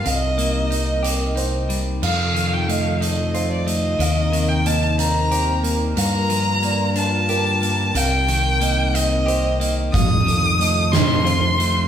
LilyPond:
<<
  \new Staff \with { instrumentName = "Violin" } { \time 6/8 \key c \dorian \tempo 4. = 61 ees''2~ ees''8 r8 | f''8. g''16 f''8 ees''8. d''16 ees''8~ | ees''8. g''16 a''8 bes''4 r8 | bes''4. a''4. |
g''4. ees''4 r8 | ees'''4. c'''4. | }
  \new Staff \with { instrumentName = "Felt piano" } { \time 6/8 \key c \dorian f''4 ees''4 c''4 | f''4 ees''4 c''4 | f''4 ees''4 c''4 | f''4 d''4 bes'4 |
f''4 ees''4 c''4 | f''4 ees''4 c''4 | }
  \new Staff \with { instrumentName = "Analog synth pad" } { \time 6/8 \key c \dorian << { <g bes'>2. | <f a'>2. | <g bes'>2.~ | <g bes'>2.~ |
<g bes'>2. | <f a'>2. | } \\ { <c ees'>2. | <c ees'>2.~ | <c ees'>2. | <d f'>2. |
<c ees'>2. | <c ees'>2. | } >> }
  \new Staff \with { instrumentName = "Clean electric guitar" } { \time 6/8 \key c \dorian c8 bes8 ees'8 g'8 ees'8 g8 | f,8 ees8 a8 ees'8 f'8 a8 | ees8 ees8 bes8 c'8 g'8 bes8 | g,8 f8 bes8 d'8 g'8 bes8 |
c8 ees8 bes8 c'8 g'8 bes8 | f,8 ees8 a8 ees'8 f'8 a8 | }
  \new Staff \with { instrumentName = "Fingered electric bass" } { \clef bass \time 6/8 \key c \dorian c,2. | f,2. | ees,2. | g,2. |
c,2. | f,2. | }
  \new DrumStaff \with { instrumentName = "Drums" } \drummode { \time 6/8 hh8 hh8 hh8 hh8 hh8 hh8 | cymc8 hh8 hh8 hh8 hh8 hh8 | hh8 hh8 hh8 hh8 hh8 hh8 | hh8 hh8 hh8 hh8 hh8 hh8 |
hh8 hh8 hh8 hh8 hh8 hh8 | <hh bd>8 hh8 hh8 <hh sn>8 hh8 hh8 | }
>>